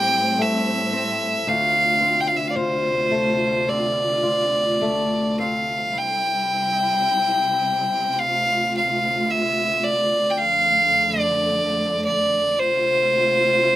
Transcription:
Already playing: A2 G3 C4 G4 G5
0.39 A3 E5
0.93 C4
1.44 D2 C3 F4
1.49 F5
2.01 C4
2.20 G5
2.27 F5
2.37 E5
2.47 D5 F5
2.55 F4 C5
3.11 A3
3.68 C4 D5
4.23 F4
4.82 A3
5.39 C4 F5
5.92 C3 G3 E4
5.97 G5
8.12 G5
8.19 D2 F4 F5
8.77 F5
9.30 E5
9.84 D5
10.30 G5
10.38 F2 D3 A3 F5
11.20 D5
12.04 D5
12.57 D2 C3 F4 C5

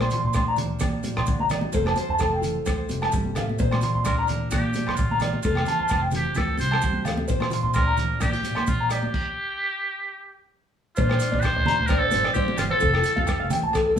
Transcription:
Already playing: A#2 F3 F4 C5
0.01 C6, cross-stick, high conga, low agogo
0.10 C6, closed hi-hat, low conga, maracas
0.15 F4
0.24 A#2 C6
0.33 D2 D4 C6, kick, cross-stick, low agogo, maracas
0.48 A#5
0.56 F3, closed hi-hat, low conga, maracas
0.79 A#2, muted nylon-string guitar stroke, kick, cross-stick, low conga, low agogo, maracas
1.03 F3, closed hi-hat, high conga, maracas
1.17 A#2 C6, cross-stick, low agogo
1.26 A#1 D3, kick, maracas
1.39 A#5, high conga
1.50 D#3 D5, cross-stick, closed hi-hat, low conga, low agogo, maracas
1.61 high conga
1.72 F1 F3 A4 C5, kick, maracas
1.85 A5, cross-stick, high conga, low agogo
1.96 C5, closed hi-hat, high conga, maracas
2.09 F2 A5
2.19 F1 A4 A5, kick, cross-stick, low agogo, maracas
2.34 G5
2.41 F4, closed hi-hat, low conga, maracas
2.66 D2 C5, kick, cross-stick, low conga, low agogo, maracas
2.89 F1 C3, closed hi-hat, high conga, maracas
3.02 A5, cross-stick, low agogo
3.11 G1 G3, kick, maracas
3.25 high conga
3.35 A1 A3 F5, cross-stick, closed hi-hat, low conga, low agogo, maracas
3.49 high conga
3.58 A#1 A#2 C5, kick, maracas
3.71 C6, cross-stick, high conga, low agogo
3.81 F4 C6, closed hi-hat, low conga, maracas
3.95 A#2 C6
4.04 D2 D4 A#4 C6, kick, cross-stick, low agogo, maracas
4.19 A#5
4.27 F3, closed hi-hat, low conga, maracas
4.51 A#2 F4 G4, kick, cross-stick, low conga, low agogo, maracas
4.73 F3, closed hi-hat, high conga, maracas
4.87 A#2 C6, cross-stick, low agogo
4.96 A#1 D3 F4, kick, maracas
5.11 A#5, high conga
5.20 D#3 D5, cross-stick, closed hi-hat, low conga, low agogo, maracas
5.33 high conga
5.42 F1 F3 F4 A4, kick, maracas
5.55 G5, cross-stick, high conga, low agogo
5.66 A5, closed hi-hat, low conga, maracas
5.79 F2 A5
5.88 F1 A5, kick, cross-stick, low agogo, maracas
6.02 G5
6.11 F4, closed hi-hat, low conga, maracas
6.16 G4
6.35 D2 F4 A4, kick, cross-stick, low conga, low agogo, maracas
6.58 C2 C3 C5, closed hi-hat, high conga, maracas
6.71 A5, cross-stick, low agogo
6.82 F1 G3, kick, maracas
6.93 D2, high conga
7.05 D2 A3 F5, cross-stick, closed hi-hat, low conga, low agogo, maracas
7.17 high conga
7.28 A#1 A#2 C5, kick, maracas
7.40 C6, cross-stick, high conga, low agogo
7.50 F4 C6, closed hi-hat, low conga, maracas
7.63 A#2 C6
7.74 D2 D4 A#4 C6, kick, cross-stick, low agogo, maracas
7.87 A#5
7.97 F3, closed hi-hat, low conga, maracas
8.20 A#2 D4 G4, kick, cross-stick, low conga, low agogo, maracas
8.33 F4
8.43 F3, closed hi-hat, high conga, maracas
8.55 A#2 C6, cross-stick, low agogo
8.67 A#1 F4, kick, maracas
8.80 A#5
8.89 D4 G4 D5, cross-stick, closed hi-hat, low agogo, maracas
9.03 high conga
9.14 kick, crash
10.96 A#1 A#2 D4 F4 C5, kick, maracas
11.09 C5, cross-stick, low agogo
11.19 D4, closed hi-hat, maracas
11.32 A#1 D5, kick, high conga
11.41 F3 C5, kick, low agogo, maracas
11.45 cross-stick
11.56 D2, muted clean electric guitar stroke
11.66 A#5, closed hi-hat, high conga, low conga
11.79 D2
11.86 D4 A#4 C5, low agogo, maracas
11.90 kick, cross-stick
11.99 A4 C5
12.11 G1 F3 C5, closed hi-hat, high conga, maracas
12.24 D5, cross-stick, low agogo
12.33 G2 F4 G4 C5, kick, maracas
12.48 high conga
12.58 G1 F4, cross-stick, closed hi-hat, low conga, low agogo, maracas
12.71 A4 C5
12.80 F1 F3 F4 A4, kick, maracas
12.93 A4, cross-stick, low agogo
13.02 F4, closed hi-hat, maracas
13.16 F2 F5, kick, high conga
13.25 F4, kick, cross-stick, low agogo, maracas
13.40 F1 F5
13.50 G5, closed hi-hat, high conga, low conga, maracas
13.62 D2 A5
13.73 A4, kick, cross-stick, low agogo, maracas
13.86 A4
13.96 F1 C3 A4

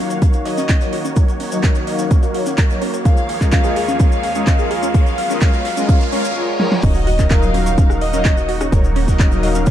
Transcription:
Already playing: D#3 A#3 F#4 C#5 F5, riser
0.00 F#3 D#4 A#4 F5
0.10 C#5, closed hi-hat, cabasa
0.22 C#4, kick, closed hi-hat, cabasa
0.33 closed hi-hat, cabasa
0.45 F#3 D#4 A#4 C#5 D#5, snare, closed hi-hat, open hi-hat
0.58 C#4, snare, closed hi-hat, cabasa
0.69 C#4, kick, snare, clap, closed hi-hat, cabasa
0.81 F#3 D#4 F#4 A#4 C#5, snare, closed hi-hat, cabasa
0.93 F#4, closed hi-hat, open hi-hat
1.05 C#4, closed hi-hat, cabasa
1.16 F#3 D#4 A#4 C#5, kick, closed hi-hat, cabasa
1.28 closed hi-hat, cabasa
1.40 C#4, open hi-hat
1.52 F#3 D#4 A#4 C#5 D#5, snare, closed hi-hat, cabasa
1.63 C#4, kick, snare, clap, closed hi-hat, cabasa
1.75 snare, closed hi-hat, cabasa
1.86 F#3 D#4 A#4 D#5 F5, snare, closed hi-hat, open hi-hat
1.99 C#4, snare, closed hi-hat, cabasa
2.11 C#4, kick, closed hi-hat, cabasa
2.23 F#4, closed hi-hat, cabasa
2.34 F#3 D#4 F#4 A#4 C#5, closed hi-hat, open hi-hat
2.46 C#4, snare, closed hi-hat, cabasa
2.58 A#4, kick, snare, clap, closed hi-hat, cabasa
2.70 F#3 D#4 A#4 C#5, cabasa
2.81 C#4, closed hi-hat, open hi-hat
2.94 C#5, closed hi-hat, cabasa
3.05 F3 G#3 C#4 F4 G#4 A#4 C#5 F5, kick, closed hi-hat, cabasa
3.17 closed hi-hat, cabasa
3.29 F5, closed hi-hat, open hi-hat
3.41 G#3 C#4 F4 A#4 D#5, kick, clap, closed hi-hat, cabasa
3.52 C#4 F5, kick, snare, clap, closed hi-hat, cabasa
3.64 G#4, closed hi-hat, cabasa
3.76 G#3 F4 G#4 A#4 F5, closed hi-hat, open hi-hat
3.88 C#4, closed hi-hat, cabasa
4.00 G#3 C#4 F4 A#4 C#5 F5, kick, closed hi-hat, cabasa
4.12 closed hi-hat, cabasa
4.23 F5, closed hi-hat, open hi-hat
4.35 G#3 C#4 F4 A#4 D#5, closed hi-hat, cabasa
4.46 C#4 F5, kick, snare, clap, closed hi-hat, cabasa
4.59 G#4, cabasa
4.71 G#3 F4 G#4 A#4 F5, closed hi-hat, open hi-hat
4.83 C#4, closed hi-hat, cabasa
4.94 F#3 G#3 B3 C#4 A#4 C#5 F5, kick, closed hi-hat, cabasa
5.06 closed hi-hat, cabasa
5.17 F5, open hi-hat
5.30 G#3 C#4 F4 A#4 D#5, snare, closed hi-hat, cabasa
5.41 G#3 C#4 F4 A#4 C#5 F5, kick, snare, clap, closed hi-hat, cabasa
5.53 snare, closed hi-hat, cabasa
5.65 F5, snare, closed hi-hat, open hi-hat
5.77 G#3 C#4 F4 A#4 D#5, snare, closed hi-hat, cabasa
5.89 G#3 C#4 C#5 F5, kick, snare, closed hi-hat, reverse cymbal, cabasa
6.01 snare, closed hi-hat, cabasa
6.12 G#3 C#4 F4 A#4 C#5 F5, snare, open hi-hat
6.24 snare, closed hi-hat, cabasa
6.36 G#3 F4 A#4 C#5
6.60 G#3 F4 A#4 C#5, snare
6.72 snare
6.83 D#1 C#3 F#3 A#3 C#4 D#4 A#4 C#5 D#5, kick, closed hi-hat, crash, impact, cabasa
6.94 F#4 F#5, closed hi-hat, cabasa
7.07 F#4 F#5, closed hi-hat, open hi-hat
7.19 F#3 C#4 D#4 A#4 C#5 D#5, kick, clap, closed hi-hat, cabasa
7.31 A#4 F5 A#5, kick, snare, clap, closed hi-hat, cabasa
7.43 cabasa
7.54 F#3 C#4 D#4 A#4 C#5 F5, closed hi-hat, open hi-hat
7.66 C#5 C#6, closed hi-hat, cabasa
7.78 C#4 C#5, kick, closed hi-hat, cabasa
7.90 cross-stick, cabasa
8.01 D#5 D#6, closed hi-hat, open hi-hat
8.13 F#3 C#4 D#4 A#4 C#5 F5, closed hi-hat, cabasa
8.25 F#3 C#4 D#4 C#5, kick, snare, clap, closed hi-hat, cabasa
8.37 F#4 F#5, cabasa
8.48 F#4 F#5, closed hi-hat, open hi-hat
8.61 C#4 C#5, cross-stick, closed hi-hat, cabasa
8.72 D#1 F#3 D#4 A#4 C#5 A#5, kick, closed hi-hat, cabasa
8.84 cabasa
8.96 C#4 C#5, open hi-hat
9.08 F#3 D#4 A#4 C#5 D#5 C#6, kick, snare, closed hi-hat, cabasa
9.20 C#4 C#5, kick, snare, clap, closed hi-hat, cabasa
9.32 snare, cabasa
9.43 F#3 D#4 A#4 D#5 F5 D#6, snare, closed hi-hat, open hi-hat
9.55 C#4 C#5, closed hi-hat, cabasa
9.66 C#4 C#5, kick, closed hi-hat, cabasa

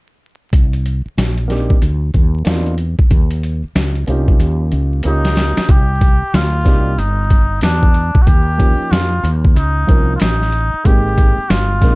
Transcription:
0.53 C2, kick, closed hi-hat
0.73 closed hi-hat
0.86 closed hi-hat
1.06 muted fretless electric bass stroke
1.17 A#1, snare, closed hi-hat
1.38 closed hi-hat
1.48 A#3 C4 D4 D#4 G4, snare, closed hi-hat
1.70 kick
1.82 D2, closed hi-hat
2.14 D#2, kick, closed hi-hat
2.45 E2 A#3 C4 D4 D#4 F4, snare, closed hi-hat
2.67 closed hi-hat
2.78 closed hi-hat
2.99 muted fretless electric bass stroke, kick
3.11 D#2, kick, closed hi-hat
3.31 closed hi-hat
3.43 closed hi-hat
3.64 muted fretless electric bass stroke
3.75 C#2, snare, closed hi-hat
3.95 closed hi-hat
4.07 C2 A#3 C#4 D#4 F4 G4, closed hi-hat
4.28 kick
4.40 D#2, closed hi-hat
4.72 C#2, closed hi-hat
5.03 C#2 A#3 C#4 D#4 F4, closed hi-hat
5.07 G4
5.25 snare, closed hi-hat
5.36 snare, closed hi-hat
5.57 muted fretless electric bass stroke, snare
5.69 C2 G4, kick, closed hi-hat
6.01 kick, closed hi-hat
6.22 muted fretless electric bass stroke
6.34 D2 F4, snare, closed hi-hat
6.65 C2 A#3 C4 D4 D#4 G4, kick, snare, closed hi-hat
6.98 G1 D#4, closed hi-hat
7.30 kick, closed hi-hat
7.61 E2 D4, snare, closed hi-hat
7.83 kick
7.94 closed hi-hat
8.15 muted fretless electric bass stroke, kick
8.22 F#4
8.26 D#2 G4, kick, closed hi-hat
8.58 F3 A#3 C#4 D#4 G4, kick, closed hi-hat
8.79 muted fretless electric bass stroke
8.91 F2 F4, snare, closed hi-hat
9.23 D#2, closed hi-hat
9.45 kick
9.55 C#2 D#4, closed hi-hat
9.87 C2 F3 A#3 C#4 D#4 A#4, kick, closed hi-hat
10.16 F4, closed hi-hat
10.21 A1 D#4, snare
10.41 snare
10.52 closed hi-hat
10.73 muted fretless electric bass stroke
10.84 G#1 G#3 A#3 C4 D#4 G4, kick, closed hi-hat
11.18 kick, closed hi-hat
11.38 muted fretless electric bass stroke
11.50 G1 F4, snare, closed hi-hat
11.80 A#1 G#3 A#3 C4 D#4 A#4, kick, snare, closed hi-hat

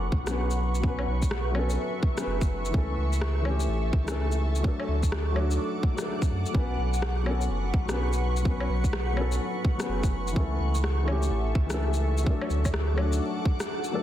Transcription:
Already playing: F#1 F#3 B3 C#4 A4 B4 F#5 C#6
0.12 B1, kick
0.23 F#3 B3, cross-stick, shaker
0.29 C#4 B4
0.51 shaker
0.75 shaker
0.79 F#3 B3 E5
0.84 C#4 B4, kick
0.99 low woodblock
1.07 B1
1.22 kick, shaker
1.31 cross-stick
1.51 F#3 B3, low woodblock
1.56 C#4 A4
1.70 shaker
2.03 kick
2.13 F#3 B3
2.18 C#4 B4, cross-stick, shaker
2.26 F#1
2.41 kick, shaker
2.65 shaker
2.70 C#2 E3 A3
2.74 C#4 A4, kick
2.78 A4
2.98 C#2
3.13 shaker
3.21 cross-stick
3.41 E3 A3, low woodblock
3.47 C#4 G4
3.60 shaker
3.69 A1
3.93 C#2, kick
4.04 E3 A3
4.08 C#4 A4, cross-stick, shaker
4.32 shaker
4.55 shaker
4.60 F#3 A3
4.64 D4 A4 F#5 D6, kick
4.80 low woodblock
4.88 D2
5.03 kick, shaker
5.12 cross-stick
5.32 F#3 A3
5.36 D4 F#4, low woodblock
5.51 shaker
5.83 kick
5.94 F#3 A3
5.98 D4 A4, cross-stick, shaker
6.22 kick, shaker
6.31 F#2
6.46 shaker
6.51 B1 F#3 B3 B4 C#6, kick
6.56 C#4 B4
6.78 B1
6.94 shaker
7.02 cross-stick
7.22 F#3 B3, low woodblock
7.28 C#4 A4
7.41 shaker
7.50 F#1
7.74 B1, kick
7.85 F#3 B3, cross-stick, shaker
7.91 C#4 B4
8.13 shaker
8.37 shaker
8.42 F#3 B3, kick
8.47 C#4 B4
8.60 low woodblock
8.69 B1
8.84 kick, shaker
8.93 cross-stick
9.13 F#3 B3, low woodblock
9.18 C#4 A4
9.32 shaker
9.65 kick
9.75 F#3 B3
9.80 C#4 B4, cross-stick, shaker
9.88 F#1
10.03 kick, shaker
10.28 shaker
10.32 E3 A3
10.36 C#2 C#4 A4 E5, kick
10.40 A4
10.60 C#2
10.75 shaker
10.84 cross-stick
11.03 E3 A3
11.08 C#4 G4, low woodblock
11.23 shaker
11.31 A1
11.55 C#2, kick
11.66 E3 A3, cross-stick, shaker
11.71 C#4 A4
11.94 shaker
12.18 shaker
12.22 F#3 A3 A4 F#5 D6
12.26 D4 A4, kick
12.41 low woodblock
12.50 D2, shaker
12.65 kick, low woodblock, shaker
12.74 cross-stick
12.94 F#3 A3, low woodblock
12.99 D4 F#4
13.13 shaker
13.45 kick
13.60 cross-stick, shaker
13.84 shaker
13.91 F#3 A3 D4 A4

